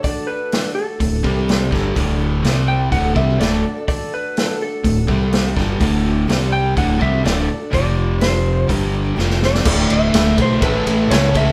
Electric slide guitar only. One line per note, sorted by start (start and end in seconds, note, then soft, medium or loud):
0.04 0.29 D5 medium
0.27 0.74 B4 medium
0.75 1.68 A4 medium
2.68 2.90 G5 medium
2.92 3.16 F#5 medium
3.16 3.39 E5 medium
3.40 3.85 D5 medium
3.88 4.13 D5 medium
4.14 4.62 B4 medium
4.62 5.53 A4 medium
6.53 6.77 G5 medium
6.78 7.02 F#5 medium
7.02 7.26 E5 medium
7.26 7.73 D5 medium
7.74 8.21 D5 medium
8.22 8.66 C5 medium
9.45 9.93 D5 medium
9.93 10.36 E5 medium
10.42 10.63 C5 medium
10.63 11.12 B4 medium
11.11 11.35 C#5 medium
11.37 11.52 E5 medium